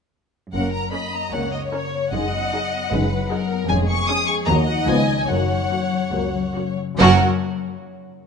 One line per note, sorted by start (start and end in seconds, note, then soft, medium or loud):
0.52 0.85 F#1 soft
0.52 0.85 F#2 soft
0.52 2.12 F#2 soft
0.52 0.68 A#3 soft
0.52 0.69 C#4 soft
0.52 0.91 A#4 soft
0.52 0.72 F#5 soft
0.72 1.13 A#3 soft
0.72 0.93 A#5 medium
0.91 1.23 C#4 soft
0.91 1.23 A#4 soft
0.91 1.72 A#4 soft
0.91 1.33 D#5 soft
0.91 1.12 B5 soft
1.12 1.52 A#3 soft
1.12 1.33 A#5 medium
1.32 1.64 C#2 soft
1.32 1.65 C#2 soft
1.32 2.16 C#3 soft
1.32 1.47 A#3 soft
1.32 1.47 C#4 soft
1.32 2.14 C#5 soft
1.32 1.53 F#5 medium
1.52 1.93 A#3 soft
1.52 1.60 D#5 medium
1.72 2.04 C#4 soft
1.72 2.16 A#4 soft
1.72 2.04 A#4 soft
1.72 2.13 C#5 soft
1.94 2.16 A#3 soft
2.12 2.45 F#1 medium
2.12 2.90 F#2 soft
2.12 2.45 F#2 medium
2.12 2.27 G#3 soft
2.12 2.27 D#4 soft
2.12 2.91 D#5 medium
2.12 3.47 F#5 medium
2.33 2.71 B3 soft
2.53 2.82 D#4 medium
2.53 2.82 G#4 soft
2.53 3.30 G#4 soft
2.72 3.49 B3 soft
2.91 3.23 F#1 medium
2.91 3.71 F#2 medium
2.91 3.23 F#2 medium
2.91 3.06 G#3 medium
2.91 3.06 D#4 soft
2.91 3.31 B4 medium
3.12 3.72 F#3 soft
3.30 3.60 D#4 medium
3.30 4.07 G#4 soft
3.30 3.60 G#4 medium
3.30 3.69 A#4 medium
3.50 3.72 B3 soft
3.69 4.01 F1 medium
3.69 4.50 F2 medium
3.69 4.01 F2 medium
3.69 3.84 G#3 medium
3.69 3.84 C#4 medium
3.69 4.49 G#4 medium
3.69 3.77 G#5 medium
3.88 4.27 G#3 soft
3.88 4.08 C#6 medium
4.08 4.39 C#4 medium
4.08 4.50 G#4 soft
4.08 4.39 G#4 medium
4.08 4.28 D#6 medium
4.27 4.50 G#3 soft
4.27 4.35 C#6 medium
4.46 4.80 D#2 medium
4.46 4.89 D#3 medium
4.46 4.63 F#3 medium
4.46 4.78 A#3 medium
4.46 4.63 A#3 medium
4.46 4.78 F#4 medium
4.46 5.29 D#5 medium
4.46 4.54 A#5 medium
4.67 5.07 D#4 soft
4.67 4.90 A#4 soft
4.67 4.87 F#5 medium
4.87 5.20 C#2 medium
4.87 5.21 C#2 medium
4.87 5.31 C#3 soft
4.87 5.02 F3 medium
4.87 5.02 B3 medium
4.87 5.19 B3 soft
4.87 5.19 F4 soft
4.87 5.17 G#5 medium
5.08 5.31 D#4 soft
5.08 5.31 B4 soft
5.18 5.29 G#5 medium
5.28 5.62 F#1 medium
5.28 6.94 F#2 soft
5.28 5.62 F#2 medium
5.28 5.44 F#3 soft
5.28 5.44 A#3 soft
5.28 6.74 C#5 medium
5.28 6.56 F#5 medium
5.50 5.89 F#3 soft
5.71 6.03 A#3 soft
5.71 6.54 C#4 soft
5.71 6.03 F#4 soft
5.91 6.33 F#3 soft
6.13 6.47 C#2 medium
6.13 7.01 C#3 soft
6.13 6.28 F#3 soft
6.13 6.28 A#3 soft
6.35 6.76 F#3 soft
6.56 6.89 A#3 soft
6.56 6.98 C#4 soft
6.56 6.89 F#4 soft
6.77 6.97 F#3 soft
6.94 7.23 F#2 medium
6.94 7.23 F#3 medium
6.99 7.23 F#1 medium
6.99 7.22 F#2 medium
6.99 7.23 F#3 medium
6.99 7.17 F#3 medium
6.99 7.17 A#3 medium
6.99 7.23 C#4 medium
6.99 7.23 F#4 medium
6.99 7.23 A#4 medium
6.99 7.23 F#5 medium
7.04 7.23 C#5 medium